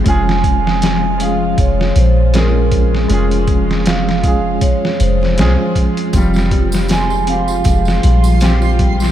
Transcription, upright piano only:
X:1
M:4/4
L:1/8
Q:"Swing 16ths" 1/4=79
K:Dblyd
V:1 name="Upright piano"
[A,DFA]3 [A,DFA]3 [A,DFA]2 | [A,DFA]3 [A,DFA]3 [A,DFA]2 | [G,CF]3 [CFG]3 [CFG]2 |]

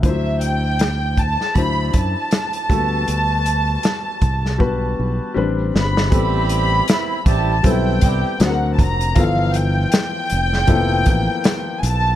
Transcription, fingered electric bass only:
X:1
M:4/4
L:1/16
Q:"Swing 16ths" 1/4=79
K:Ador
V:1 name="Fingered electric bass" clef=bass
D,,6- D,, z D,,2 F,, z3 D,,2 | D,,4 z2 C,,2 B,,,2 B,,, z A,,,2 G,,,2 | A,,,4 z2 A,,,2 B,,,2 C,, z D,,2 ^E,,,2 | G,,,4 z2 =F,,,2 F,,,2 A,,, z3 B,,,2 |]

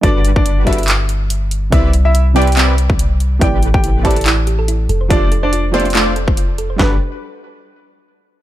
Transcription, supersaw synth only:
X:1
M:4/4
L:1/16
Q:"Swing 16ths" 1/4=142
K:G
V:1 name="Supersaw synth"
[G,DFBd]6 [G,DFBd] z8 z | [G,CEBd]2 z4 [G,CEBd] z [G,CEBd]2 z6 | [A,CGBd]6 [A,CGBd] z8 z | [A,D=Fcd]2 z4 [A,DFcd] z [A,DFcd]2 z6 |
[G,DFBd]2 z12 z2 |]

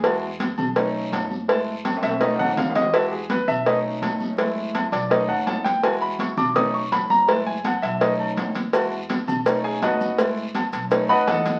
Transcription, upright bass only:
X:1
M:4/4
L:1/8
Q:1/4=166
K:Bmix
V:1 name="Upright bass" clef=bass
E,,3 B,,,3 F,,,2- | F,,,3 B,,,3 E,,2- | E,,3 B,,,3 F,,,2- | F,,,3 B,,,2 D,, E,,2- |
E,,3 B,,,3 F,,,2- | F,,,3 B,,,3 E,,2- | E,,3 B,,,3 F,,,2- | F,,,3 B,,,2 D,, E,,2 |]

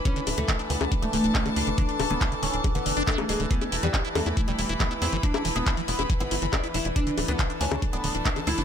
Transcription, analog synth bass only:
X:1
M:4/4
L:1/16
Q:1/4=139
K:Ddor
V:1 name="Analog synth bass" clef=bass
z2 D,,, D,, z2 D,, D,, z D,,, D,,, D,,, z2 D,, ^F,,, | z2 D,,, D,,, z2 D,,, D,,, z ^F,,, F,,, F,,, z2 D,,, D,,, | z2 E,,, E,, z2 E,, E,, z E,,, E,,, E,,, z2 E,, G,,, | z2 E,,, E,,, z2 E,,, E,,, z G,,, G,,, G,,, z2 E,,, E,,, |
z2 D,,, D,, z2 D,, D,, z D,,, D,,, D,,, z2 D,, ^F,,, |]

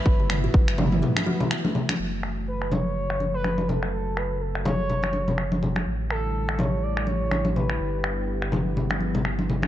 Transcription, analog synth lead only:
X:1
M:4/4
L:1/16
Q:"Swing 16ths" 1/4=124
K:F#phr
V:1 name="Analog synth lead"
B6 z8 z2 | z4 B2 c4- c B3 A2 | A2 B2 A2 c8 z2 | z2 A4 c2 d2 c4 B2- |
B6 z8 z2 |]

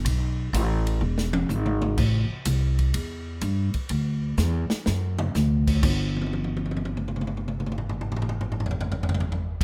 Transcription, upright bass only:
X:1
M:4/4
L:1/8
Q:"Swing" 1/4=125
K:Ador
V:1 name="Upright bass" clef=bass
B,,,2 A,,,2 E,,,2 ^G,,,2 | A,,, z C,,2 E,,2 G,, z | D,,2 E,, z F,,2 D,,2 | G,,,8- |
G,,,8 |]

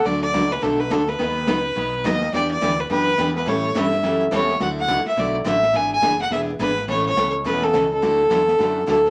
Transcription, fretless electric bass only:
X:1
M:4/4
L:1/8
Q:"Swing" 1/4=211
K:D
V:1 name="Fretless electric bass" clef=bass
D,,2 C,,2 B,,,2 D,,2 | ^D,,2 C,,2 B,,,2 D,,2 | E,,2 D,,2 F,,2 E,,2 | A,,2 G,,2 F,,2 E,,2 |
D,,2 C,, z B,,,2 A,,,2 | ^G,,,2 F,,,2 E,,,2 G,,,2 | A,,,2 C,,2 E,,2 C,,2 | D,,2 E,,2 F,,2 D,,2 |]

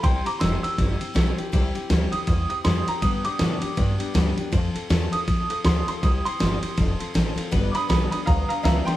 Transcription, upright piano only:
X:1
M:4/4
L:1/8
Q:"Swing" 1/4=160
K:C
V:1 name="Upright piano"
[gc'] [_bd'] [c'e'] e'4- e'- | e' z2 _e' z e' c' _b | _e' d'6 z | z3 _e' z e' c' c' |
_e' c'6 z | z [bd'_e'] [be'] [be'] [f_b] [fb] [=efb] [gc'] |]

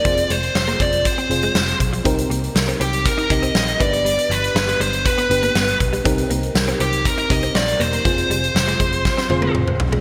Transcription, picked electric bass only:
X:1
M:4/4
L:1/16
Q:1/4=120
K:Cm
V:1 name="Picked electric bass" clef=bass
F,,,2 F,,,2 F,,,2 F,,,3 z F,,,2 F,,,2 =B,,,2 | C,,2 C,,2 C,,2 C,,3 z C,,2 B,,,2 G,,,2- | G,,,2 G,,,2 G,,,2 G,,,3 z G,,,2 G,,,2 =B,,,2 | C,,2 C,,2 C,,2 C,,3 z C,,2 B,,,2 =E,,,2 |
F,,,2 F,,,2 F,,,2 F,,,3 z F,,,2 F,,,2 =B,,,2 |]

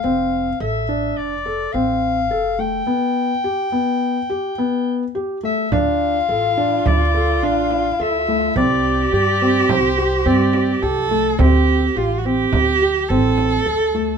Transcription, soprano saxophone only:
X:1
M:5/4
L:1/8
Q:1/4=106
K:Ddor
V:1 name="Soprano saxophone"
f2 e2 d2 f3 g- | g8 z e | f4 d2 f2 e2 | d2 d2 c2 d2 z2 |
z8 z2 |]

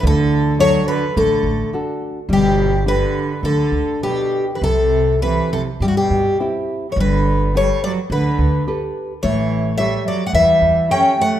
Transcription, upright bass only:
X:1
M:4/4
L:1/8
Q:1/4=106
K:Glyd
V:1 name="Upright bass" clef=bass
D,,4 A,,, A,,, z2 | G,,,4 D,, D,, z2 | =C,,4 G,, G,, z2 | G,,,4 D,, D,, z2 |
A,,,4 E,, E,, z2 |]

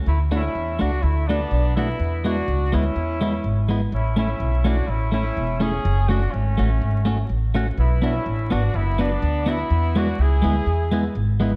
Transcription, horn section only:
X:1
M:4/4
L:1/8
Q:"Swing" 1/4=124
K:Emix
V:1 name="Horn section"
[A,E] [CE]2 [DF] [A,E] [B,D]2 [B,E]- | [B,E] [DF]2 [CE]4 z | [CE] [CE]2 [DF] [CE] [CE]2 [CG]- | [CG] [DF] [A,C]4 z2 |
[B,E] [CE]2 [DF] [B,E] [B,D]2 [B,E]- | [B,E] [DF] [EG]4 z2 |]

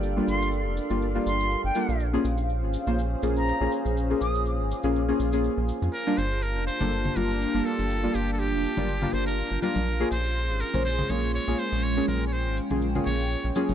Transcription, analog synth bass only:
X:1
M:4/4
L:1/16
Q:"Swing 16ths" 1/4=122
K:Bb
V:1 name="Analog synth bass" clef=bass
G,,, z G,,,3 F,,, z G,,,2 z G,,,2 z G,,, z B,,,- | B,,, z B,,,3 _A,,, z B,,,2 z B,,,2 z B,,, z B,,,- | B,,, z B,,,3 _A,,, z B,,,2 z B,,,2 z B,,, z F,, | z2 G,,,3 F,,, z G,,,2 z G,,,2 z G,,, z G,,,- |
G,,, z G,,,3 F,,, z G,,,2 z G,,,2 z G,,, z B,,,- | B,,, z B,,,3 _A,,, z B,,,2 z B,,,2 z B,,, z B,,,- | B,,, z B,,,3 _A,,, z B,,,2 z B,,,2 z B,,, z G,,, |]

